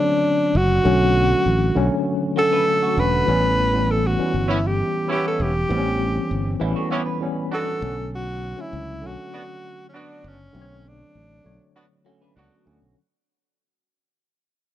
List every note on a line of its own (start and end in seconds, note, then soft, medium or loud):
0.00 0.84 D3 medium
0.00 0.85 F#3 medium
0.00 0.85 A3 medium
0.00 3.29 C4 medium
0.00 0.86 C#4 medium
0.00 0.58 D4 loud
0.00 0.42 C#5 medium
0.55 0.78 F#1 loud
0.55 2.11 F#4 loud
0.84 1.32 B1 loud
0.84 1.63 D3 medium
0.84 1.64 F#3 medium
0.84 1.64 A3 medium
0.84 1.64 C#4 loud
1.46 1.69 A1 medium
1.75 1.88 B1 medium
1.75 2.28 D3 medium
1.75 2.28 F#3 medium
1.75 2.29 A3 medium
1.75 2.29 C#4 loud
2.36 2.89 D3 medium
2.36 2.89 F#3 medium
2.36 2.89 A3 medium
2.36 2.51 A3 medium
2.36 2.90 C#4 medium
2.36 2.51 F#4 medium
2.36 3.01 A4 loud
2.53 2.67 D4 medium
2.53 2.67 B4 medium
2.67 2.82 C#4 medium
2.67 2.81 A4 medium
2.82 3.26 A3 medium
2.82 3.25 F#4 medium
2.97 3.21 E1 medium
2.97 3.23 D3 medium
2.97 3.23 F#3 medium
2.97 3.24 A3 medium
2.97 3.24 C#4 medium
2.97 3.92 B4 loud
3.27 4.15 A1 loud
3.27 3.66 E3 loud
3.27 3.67 G3 medium
3.27 3.67 B3 medium
3.27 3.67 C#4 loud
3.73 4.12 E3 medium
3.73 4.12 G3 medium
3.73 4.13 B3 medium
3.73 4.13 C#4 medium
3.91 4.08 A4 loud
4.07 4.50 F#4 medium
4.18 5.23 E3 medium
4.18 5.24 G3 medium
4.18 5.24 B3 medium
4.18 5.24 C#4 medium
4.34 4.81 G1 medium
4.48 4.58 B3 medium
4.48 4.58 C#4 medium
4.48 4.58 E4 medium
4.48 4.68 E4 medium
4.67 5.11 G4 medium
5.09 5.52 B3 medium
5.09 5.52 C#4 medium
5.09 5.52 E4 medium
5.09 5.25 G4 medium
5.27 5.44 A4 medium
5.40 5.63 E1 loud
5.40 6.62 G4 loud
5.69 6.17 A1 loud
5.69 6.48 E3 medium
5.69 6.49 G3 medium
5.69 6.49 B3 medium
5.69 5.77 C4 medium
5.78 6.53 C#4 loud
6.31 6.54 G1 medium
6.60 6.73 A1 medium
6.60 7.13 E3 loud
6.60 7.13 G3 medium
6.60 6.76 G3 medium
6.60 7.13 B3 medium
6.60 7.14 C#4 medium
6.60 6.75 E4 medium
6.76 6.91 A3 medium
6.76 6.90 F#4 medium
6.91 7.01 B3 medium
6.91 7.06 B3 medium
6.91 7.01 C#4 medium
6.91 7.01 E4 medium
6.91 7.05 G4 medium
7.06 7.78 B4 medium
7.20 7.73 E3 medium
7.20 7.74 G3 medium
7.20 7.74 B3 medium
7.20 7.74 C#4 loud
7.52 7.95 B3 medium
7.52 7.95 D4 medium
7.52 7.95 F#4 medium
7.52 8.09 A4 loud
7.81 8.53 B1 loud
7.81 8.47 D3 medium
7.81 8.47 F#3 medium
7.81 8.48 A3 medium
7.81 8.48 C#4 medium
8.15 8.62 F#4 loud
8.57 8.97 D3 medium
8.57 8.97 F#3 medium
8.57 8.97 A3 medium
8.57 8.97 C#4 medium
8.61 9.08 E4 loud
8.73 9.03 C#2 loud
9.02 9.15 B1 medium
9.02 10.07 D3 medium
9.02 10.08 F#3 medium
9.02 10.08 A3 medium
9.02 10.08 C#4 medium
9.06 9.88 F#4 loud
9.33 9.43 B3 medium
9.33 9.43 D4 medium
9.33 9.43 F#4 medium
9.89 9.99 C#4 medium
9.94 10.37 B3 medium
9.94 10.37 D4 medium
9.94 10.29 D4 medium
9.94 10.37 F#4 medium
10.24 10.48 F#1 loud
10.24 10.90 C#4 medium
10.53 11.02 B1 loud
10.53 11.33 D3 loud
10.53 11.33 F#3 medium
10.53 11.33 A3 medium
10.53 10.61 C4 medium
10.61 11.37 C#5 loud
10.88 11.77 D4 medium
11.15 11.39 A1 medium
11.44 11.57 B1 medium
11.44 11.97 D3 medium
11.44 11.98 F#3 medium
11.44 11.98 A3 medium
11.44 11.98 C#5 medium
11.75 11.85 B3 medium
11.75 11.85 D4 medium
11.75 11.85 F#4 medium
12.05 12.58 D3 medium
12.05 12.58 F#3 medium
12.05 12.58 A3 medium
12.05 12.21 A3 medium
12.05 12.59 C#4 loud
12.05 12.20 F#4 medium
12.21 12.36 D4 medium
12.21 12.36 B4 medium
12.36 12.48 C#2 medium
12.36 12.80 B3 medium
12.36 12.51 C#4 medium
12.36 12.79 D4 medium
12.36 12.80 F#4 loud
12.36 12.51 A4 medium
12.51 12.95 A3 medium
12.51 12.95 F#4 medium
12.65 12.79 D2 loud
12.65 12.92 D3 medium
12.65 12.92 F#3 medium
12.65 12.93 A3 medium
12.65 12.93 C#4 medium
12.82 12.94 B1 medium